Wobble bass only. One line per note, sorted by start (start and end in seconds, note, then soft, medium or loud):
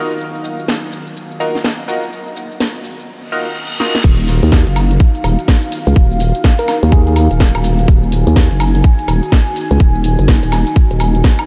4.04 4.41 D#1 loud
4.43 4.65 D#2 loud
4.67 4.99 F#1 medium
5.24 5.37 D#1 loud
5.87 5.95 C#2 loud
5.96 6.33 D#1 loud
6.83 7.29 D#2 loud
7.31 7.53 D#1 loud
7.55 7.87 D#1 medium
7.88 8.25 D#1 loud
8.27 8.49 D#2 loud
8.51 8.83 F#1 loud
9.08 9.21 D#1 loud
9.71 9.79 C#2 loud
9.80 10.17 D#1 loud
10.19 10.41 F#1 medium
10.43 10.65 D#1 loud
10.91 11.23 D#1 medium